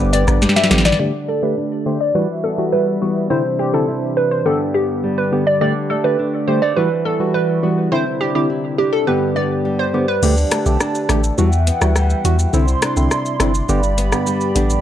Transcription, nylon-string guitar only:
Already playing: G2 G3 D4
0.13 D4
0.42 G3
0.71 B3
1.00 D3 D4
1.28 A3
1.57 D4
1.86 A3
2.15 E3
2.44 B3
2.73 G3
3.01 B3
3.30 C3 E4
3.59 D4
3.88 E4
4.17 D4
4.46 G2
4.75 B3
5.04 G3
5.32 B3
5.61 D3 D4
5.90 A3
6.19 D4
6.48 G3
6.62 A3
6.77 E3
7.05 B3
7.34 G3
7.63 B3
7.92 C3 E4
8.21 D4
8.50 E4
8.79 D4
9.07 G2
9.36 B3
9.65 G3
9.94 B3
10.23 D3 D4
10.52 A3
10.80 D4
11.09 A3
11.38 E3
11.67 B3
11.96 G3
12.25 F#4
12.53 C3 E4
12.82 D4
13.11 E4
13.40 D4
13.69 G2
13.98 B3
14.27 G3
14.55 D4

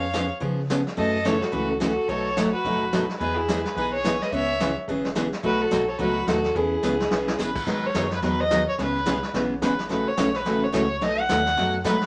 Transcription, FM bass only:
Already playing: F2
0.41 C#3
0.98 F#2
1.53 C#2
2.09 B1
2.65 F#1
3.20 E2
3.76 B1
4.32 C#2
4.88 G#1
5.44 B1
5.72 B1
5.99 C#2
6.27 D#2
6.55 E2
6.83 C#2
7.12 B1
7.39 A1
7.67 G#2
7.95 F#2
8.22 E2
8.51 D#2
8.68 D#2
8.78 C#2
9.06 C2
9.24 C2
9.34 B1
9.62 G#1
9.90 A1
10.07 A1
10.18 B1
10.46 A1
10.74 C#2
11.01 B1
11.29 D#2
11.57 F#2
11.85 G#2

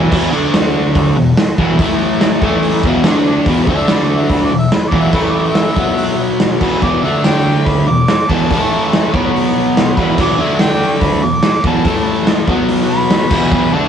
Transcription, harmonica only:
3.76 E5
3.91 B4
4.04 D5
4.18 E5
4.31 B4
4.45 D5
4.58 E5
4.73 B4
4.88 D5
5.02 E5
5.17 B4
5.30 D5
5.46 E5
6.63 B4
6.83 D5
7.03 E5
7.24 G5
7.66 B5
7.88 D6
8.30 A5
9.96 B4
10.20 D5
10.40 E5
10.60 G5
11.02 B5
11.24 D6
11.67 A5
12.90 B5
13.73 A5

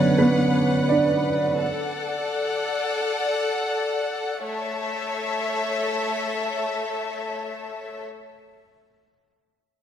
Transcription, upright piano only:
Already playing: D3 F#3 B3 C#4 D4 C#5 D5
0.18 B3 B4
0.89 D4 D5

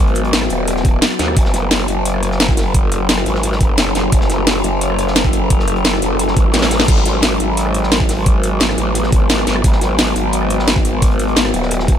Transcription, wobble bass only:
Already playing: G#1
0.50 D#1
1.19 D#2
1.37 F#1
1.88 F#1
3.26 G#1
3.61 F#1
3.95 F#1
4.12 F#1
4.64 F#1
6.02 F#1
6.37 G#1
6.54 A1
6.88 G#1
7.40 G#1
8.78 A1
9.12 G#1
9.47 G#1
9.64 G#1
10.16 G#1
11.54 D#1

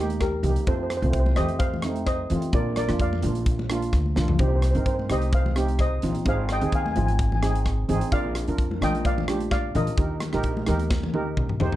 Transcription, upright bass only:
Already playing: D#2
0.43 C2
0.67 F2
1.02 C2
1.38 F2
2.31 F2
2.53 A#1
2.89 F2
3.24 A#1
3.93 D2
4.17 C2
4.39 C2
4.75 G2
5.10 C2
6.03 A#1
6.25 G#1
6.62 D#2
6.97 G#1
7.89 G#1
8.12 A#1
8.48 F2
8.81 A#1
9.75 A#1
9.97 D#2
10.34 A#1
10.68 D#2
11.60 D#2

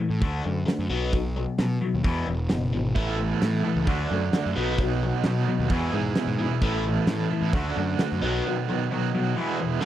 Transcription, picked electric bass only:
0.10 A2
0.22 D2
0.46 F#2
0.79 F#2
0.90 B1
1.59 B2
1.94 D#2
2.04 E2
2.28 E1
2.51 F#1
2.74 G#1
2.96 A1
3.42 A2
3.76 C#2
3.87 D2
4.11 F#2
4.46 F#2
4.57 B1
5.25 B2
5.59 D#2
5.70 E2
5.93 G#2
6.27 G#2
6.62 A1
7.07 A2
7.42 A2
7.53 D2
7.77 F#2
8.12 F#2
8.23 B1

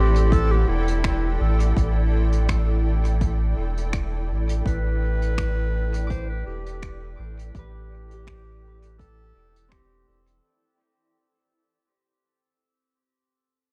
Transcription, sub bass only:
Already playing: A1
0.68 E1
1.41 A1
1.77 A1
3.58 E1
4.30 A1
4.66 A1
6.47 E1
7.19 A1
7.55 A1
9.36 E1
10.08 E1

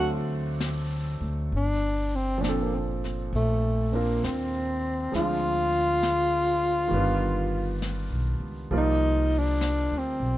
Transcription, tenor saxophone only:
1.56 D4
2.15 C4
2.41 D4
2.49 C4
2.63 A#3
2.75 C4
3.36 A3
3.95 A#3
4.24 C4
5.15 F4
8.77 D#4
9.39 D4
9.98 C4

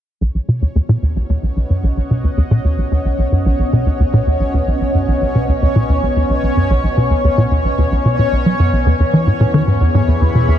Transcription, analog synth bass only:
0.21 B1
0.35 B1
0.48 B2
0.62 D#2
0.76 D#2
0.89 A#2
1.03 D#2
1.16 B1
1.30 D#2
1.43 B1
1.57 B1
1.70 F#2
1.84 B1
1.97 B1
2.11 B2
2.24 D#2
2.38 D#2
2.51 A#2
2.65 D#2
2.78 B1
2.92 D#2
3.05 B1
3.19 B1
3.32 F#2
3.46 B1
3.59 B1
3.73 B2
3.86 D#2
4.00 D#2
4.13 A#2
4.27 D#2
4.40 B1
4.54 D#2
4.68 B1
4.81 B1
4.95 F#2
5.08 B1
5.22 B1
5.35 B2
5.49 D#2
5.62 D#2
5.76 A#2
5.89 D#2
6.03 B1
6.16 D#2
6.30 B1
6.43 B1
6.57 F#2
6.70 B1
6.84 B1
6.97 B2
7.11 D#2
7.24 D#2
7.38 A#2
7.51 D#2
7.65 B1
7.78 D#2
7.92 B1
8.05 B2
8.19 A#2
8.32 B1
8.46 F#3
8.60 F#2
8.73 B1
8.86 E2
9.00 E2
9.13 E3
9.27 G#2
9.40 A#2
9.54 D#3
9.67 G#2
9.81 E2
9.95 G#2
10.08 E2
10.22 E2
10.35 B2
10.48 E2

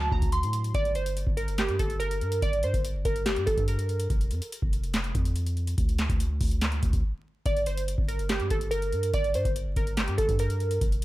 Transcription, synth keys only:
0.12 A#5
0.32 C6
0.75 D5
0.95 C5
1.37 A#4
1.59 G4
1.79 A4
2.00 A#4
2.42 D5
2.64 C5
3.05 A#4
3.26 G4
3.46 A4
3.68 A#4
7.46 D5
7.67 C5
8.08 A#4
8.30 G4
8.51 A4
8.71 A#4
9.14 D5
9.35 C5
9.77 A#4
9.97 G4
10.18 A4
10.40 A#4

